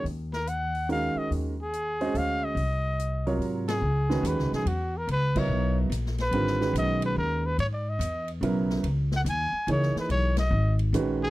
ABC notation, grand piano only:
X:1
M:3/4
L:1/8
Q:"Swing" 1/4=143
K:Abmix
V:1 name="Grand piano"
z4 [E,A,DGB]2- | [E,A,DGB] z2 [A,DGce]3 | z3 [C,G,FBd]3 | [K:C#dor] z [D,G,CFB]3 z2 |
z [F,B,EAd]3 z2 | [=D,=G,^B,^EA] [^D,^G,CF=B]4 z | z4 [C,F,B,EA]2 | z4 [E,A,DGc]2- |
[E,A,DGc] z3 [D,G,CFB]2 |]